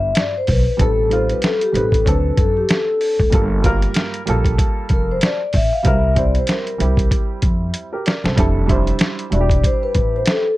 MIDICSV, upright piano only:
0, 0, Header, 1, 2, 480
1, 0, Start_track
1, 0, Tempo, 631579
1, 606, Time_signature, 4, 2, 24, 8
1, 8035, End_track
2, 0, Start_track
2, 0, Title_t, "Upright piano"
2, 0, Program_c, 0, 0
2, 0, Note_on_c, 0, 55, 65
2, 0, Note_on_c, 0, 64, 61
2, 0, Note_on_c, 0, 65, 59
2, 0, Note_on_c, 0, 72, 75
2, 233, Note_off_c, 0, 55, 0
2, 238, Note_off_c, 0, 64, 0
2, 243, Note_off_c, 0, 65, 0
2, 273, Note_off_c, 0, 72, 0
2, 585, Note_on_c, 0, 55, 74
2, 596, Note_on_c, 0, 60, 70
2, 605, Note_on_c, 0, 63, 65
2, 615, Note_on_c, 0, 69, 80
2, 806, Note_off_c, 0, 55, 0
2, 812, Note_off_c, 0, 60, 0
2, 816, Note_off_c, 0, 63, 0
2, 821, Note_off_c, 0, 69, 0
2, 827, Note_on_c, 0, 55, 69
2, 835, Note_on_c, 0, 60, 66
2, 846, Note_on_c, 0, 63, 65
2, 855, Note_on_c, 0, 65, 79
2, 1258, Note_off_c, 0, 55, 0
2, 1262, Note_off_c, 0, 60, 0
2, 1267, Note_off_c, 0, 63, 0
2, 1272, Note_off_c, 0, 65, 0
2, 1309, Note_on_c, 0, 55, 73
2, 1320, Note_on_c, 0, 60, 59
2, 1331, Note_on_c, 0, 63, 64
2, 1337, Note_on_c, 0, 71, 75
2, 1551, Note_off_c, 0, 60, 0
2, 1554, Note_on_c, 0, 54, 74
2, 1558, Note_off_c, 0, 55, 0
2, 1563, Note_on_c, 0, 60, 70
2, 1569, Note_off_c, 0, 63, 0
2, 1572, Note_off_c, 0, 71, 0
2, 1572, Note_on_c, 0, 62, 68
2, 1581, Note_on_c, 0, 69, 83
2, 2397, Note_off_c, 0, 54, 0
2, 2402, Note_off_c, 0, 60, 0
2, 2406, Note_off_c, 0, 62, 0
2, 2411, Note_off_c, 0, 69, 0
2, 2508, Note_on_c, 0, 55, 71
2, 2518, Note_on_c, 0, 58, 66
2, 2529, Note_on_c, 0, 65, 65
2, 2539, Note_on_c, 0, 69, 80
2, 2728, Note_off_c, 0, 55, 0
2, 2733, Note_off_c, 0, 58, 0
2, 2738, Note_off_c, 0, 65, 0
2, 2743, Note_off_c, 0, 69, 0
2, 2751, Note_on_c, 0, 55, 82
2, 2762, Note_on_c, 0, 58, 83
2, 2774, Note_on_c, 0, 65, 83
2, 2779, Note_on_c, 0, 70, 100
2, 3180, Note_off_c, 0, 55, 0
2, 3185, Note_off_c, 0, 58, 0
2, 3191, Note_off_c, 0, 65, 0
2, 3194, Note_off_c, 0, 70, 0
2, 3235, Note_on_c, 0, 55, 77
2, 3244, Note_on_c, 0, 58, 79
2, 3253, Note_on_c, 0, 65, 77
2, 3263, Note_on_c, 0, 69, 89
2, 4078, Note_off_c, 0, 55, 0
2, 4082, Note_off_c, 0, 58, 0
2, 4087, Note_off_c, 0, 65, 0
2, 4092, Note_off_c, 0, 69, 0
2, 4430, Note_on_c, 0, 55, 77
2, 4440, Note_on_c, 0, 60, 69
2, 4448, Note_on_c, 0, 64, 65
2, 4459, Note_on_c, 0, 70, 85
2, 4649, Note_off_c, 0, 55, 0
2, 4653, Note_off_c, 0, 60, 0
2, 4658, Note_off_c, 0, 64, 0
2, 4663, Note_off_c, 0, 70, 0
2, 4672, Note_on_c, 0, 55, 69
2, 4682, Note_on_c, 0, 60, 71
2, 4691, Note_on_c, 0, 64, 65
2, 4699, Note_on_c, 0, 72, 78
2, 5100, Note_off_c, 0, 55, 0
2, 5105, Note_off_c, 0, 60, 0
2, 5110, Note_off_c, 0, 64, 0
2, 5114, Note_off_c, 0, 72, 0
2, 5155, Note_on_c, 0, 55, 70
2, 5163, Note_on_c, 0, 60, 67
2, 5174, Note_on_c, 0, 64, 67
2, 5185, Note_on_c, 0, 67, 73
2, 5655, Note_off_c, 0, 67, 0
2, 5998, Note_off_c, 0, 55, 0
2, 6002, Note_off_c, 0, 60, 0
2, 6007, Note_off_c, 0, 64, 0
2, 6024, Note_on_c, 0, 70, 60
2, 6030, Note_on_c, 0, 67, 56
2, 6121, Note_off_c, 0, 70, 0
2, 6124, Note_off_c, 0, 67, 0
2, 6129, Note_on_c, 0, 74, 64
2, 6133, Note_on_c, 0, 70, 58
2, 6258, Note_off_c, 0, 74, 0
2, 6260, Note_off_c, 0, 70, 0
2, 6262, Note_on_c, 0, 72, 62
2, 6269, Note_on_c, 0, 69, 52
2, 6350, Note_on_c, 0, 55, 82
2, 6359, Note_on_c, 0, 62, 80
2, 6369, Note_off_c, 0, 69, 0
2, 6370, Note_on_c, 0, 64, 79
2, 6380, Note_on_c, 0, 69, 88
2, 6491, Note_off_c, 0, 72, 0
2, 6569, Note_off_c, 0, 55, 0
2, 6573, Note_off_c, 0, 62, 0
2, 6578, Note_off_c, 0, 64, 0
2, 6584, Note_off_c, 0, 69, 0
2, 6588, Note_on_c, 0, 55, 88
2, 6598, Note_on_c, 0, 62, 77
2, 6606, Note_on_c, 0, 64, 85
2, 6617, Note_on_c, 0, 72, 96
2, 7018, Note_off_c, 0, 55, 0
2, 7023, Note_off_c, 0, 62, 0
2, 7027, Note_off_c, 0, 64, 0
2, 7033, Note_off_c, 0, 72, 0
2, 7070, Note_on_c, 0, 55, 69
2, 7078, Note_on_c, 0, 62, 66
2, 7089, Note_on_c, 0, 64, 67
2, 7098, Note_on_c, 0, 66, 61
2, 7148, Note_on_c, 0, 67, 83
2, 7149, Note_off_c, 0, 66, 0
2, 7915, Note_off_c, 0, 55, 0
2, 7919, Note_off_c, 0, 62, 0
2, 7925, Note_off_c, 0, 64, 0
2, 7954, Note_off_c, 0, 67, 0
2, 8035, End_track
0, 0, End_of_file